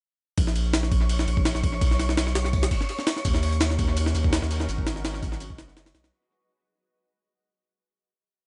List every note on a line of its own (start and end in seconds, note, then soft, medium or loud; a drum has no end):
0.38 1.26 A#1 loud
0.38 6.13 C#5 medium
0.38 6.14 C#6 medium
0.38 kick loud
0.38 ride medium
0.47 snare soft
0.56 ride medium
0.73 snare loud
0.73 open hi-hat medium
0.83 snare soft
0.92 kick loud
0.92 ride medium
1.09 ride medium
1.19 snare medium
1.27 1.54 A#1 loud
1.27 ride medium
1.37 kick medium
1.45 snare loud
1.45 ride medium
1.55 1.80 A#1 medium
1.55 snare medium
1.63 kick loud
1.63 ride medium
1.81 2.70 B1 loud
1.81 kick loud
1.81 ride medium
1.91 snare soft
2.00 snare medium
2.00 ride medium
2.09 snare medium
2.17 snare loud
2.17 ride medium
2.27 snare soft
2.35 snare loud
2.35 open hi-hat medium
2.45 snare soft
2.53 kick medium
2.53 ride medium
2.63 snare loud
2.63 open hi-hat medium
2.71 kick loud
2.71 ride medium
2.81 snare soft
2.89 ride medium
2.99 snare medium
3.07 snare loud
3.07 open hi-hat medium
3.17 snare soft
3.25 4.14 D#2 loud
3.25 kick loud
3.25 ride medium
3.25 shaker medium
3.35 snare soft
3.42 open hi-hat medium
3.42 ride medium
3.52 closed hi-hat soft
3.61 snare loud
3.61 open hi-hat medium
3.61 shaker medium
3.70 snare soft
3.78 kick medium
3.78 ride medium
3.78 shaker medium
3.97 ride medium
3.97 shaker medium
4.06 snare medium
4.15 4.41 D#2 medium
4.15 ride medium
4.15 shaker medium
4.24 kick medium
4.33 snare loud
4.33 ride medium
4.33 shaker medium
4.42 4.67 D#2 medium
4.42 snare medium
4.51 snare medium
4.51 ride medium
4.51 shaker medium
4.60 snare medium
4.69 5.57 G#1 loud
4.69 ride medium
4.69 shaker medium
4.78 kick medium
4.87 snare loud
4.87 ride medium
4.87 shaker medium
4.96 snare soft
5.05 snare loud
5.05 ride medium
5.05 shaker medium
5.14 snare soft
5.23 kick loud
5.23 ride medium
5.23 shaker medium
5.32 snare medium
5.40 ride medium
5.40 shaker loud
5.50 kick loud
5.58 5.93 F#1 medium
5.58 snare loud
5.58 ride medium
5.58 shaker medium
5.68 snare soft
5.77 snare loud
5.77 open hi-hat medium
5.77 shaker medium
5.86 snare loud
5.86 open hi-hat medium
5.94 6.11 B1 medium
5.94 snare loud
5.94 open hi-hat medium
5.94 shaker medium
6.04 snare loud
6.04 open hi-hat medium